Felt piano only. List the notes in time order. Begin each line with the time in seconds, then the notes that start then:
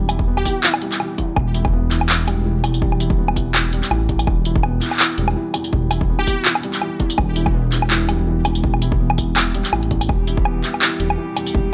Already playing: E2 E3 G3 B3 E4
0.09 E4
0.28 B3
0.46 E3
0.64 E3
0.82 G3
1.00 E3
1.18 E2
1.36 E3
1.54 E4
1.73 B3
1.91 E3
2.09 E3
2.27 G3
2.45 E3
2.64 E2
2.82 G3
3.00 E4
3.18 B3
3.36 E3
3.54 E3
3.73 G3
3.91 E3
4.09 E2
4.27 E3
4.46 E4
4.64 B3
4.82 E3
5.00 E3
5.18 G3
5.36 E3
5.55 E2
5.73 G3
5.91 E4
6.09 B3
6.28 E3
6.46 E3
6.64 G3
6.82 E3
7.00 E2
7.18 E3
7.36 E4
7.54 B3
7.73 E3
7.91 E3
8.09 G3
8.27 E3
8.46 E2
8.64 G3
8.82 E4
9.00 B3
9.18 E3
9.37 E3
9.55 G3
9.73 E3
9.91 E2
10.09 E3
10.27 E4
10.46 B3
10.64 E3
10.82 E3
11.00 G3
11.18 E3
11.37 E2
11.55 G3